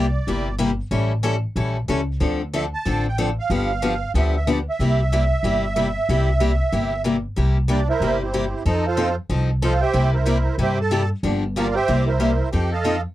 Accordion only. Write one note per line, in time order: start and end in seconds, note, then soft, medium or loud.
0.00 0.56 D5 medium
2.55 2.63 E5 medium
2.74 3.06 A5 loud
3.08 3.19 G5 medium
3.21 3.29 G5 medium
3.40 4.12 F5 loud
4.18 4.34 E5 medium
4.36 4.49 E5 medium
4.51 4.59 D5 medium
4.69 7.02 E5 medium
7.71 7.88 D4 soft
7.71 7.88 D5 medium
7.89 8.19 E4 medium
7.89 8.19 A#4 medium
7.89 8.19 C5 medium
7.89 8.19 E5 medium
8.21 8.64 C4 soft
8.21 8.63 E4 soft
8.21 8.64 G4 soft
8.21 8.63 C5 medium
8.67 8.85 D#4 soft
8.67 8.85 A4 medium
8.67 8.85 C5 medium
8.67 8.85 D#5 medium
8.86 9.15 F4 medium
8.86 9.15 A4 medium
8.86 9.16 C5 medium
8.86 9.15 F5 medium
9.63 9.81 F4 medium
9.63 9.81 A4 medium
9.63 9.79 C5 medium
9.63 9.81 F5 medium
9.81 10.11 G4 medium
9.81 10.11 C5 medium
9.81 10.11 E5 medium
9.81 10.11 G5 loud
10.13 10.56 E4 medium
10.13 10.56 A#4 medium
10.13 10.56 C5 medium
10.13 10.56 E5 medium
10.61 10.79 G4 medium
10.61 10.79 C5 medium
10.61 10.79 E5 medium
10.61 10.78 G5 medium
10.81 11.09 A4 medium
10.81 11.09 A5 medium
11.58 11.75 F4 medium
11.58 11.75 A#4 medium
11.58 11.75 D5 medium
11.58 11.75 F5 medium
11.75 12.05 G4 medium
11.75 12.04 C5 medium
11.75 12.05 E5 medium
11.75 12.04 G5 medium
12.07 12.49 E4 medium
12.07 12.49 A#4 soft
12.07 12.49 C5 medium
12.07 12.49 E5 medium
12.52 12.70 G4 medium
12.52 12.70 G5 medium
12.72 13.01 A4 medium
12.72 13.01 D#5 medium
12.72 13.02 F5 medium
12.72 13.01 A5 medium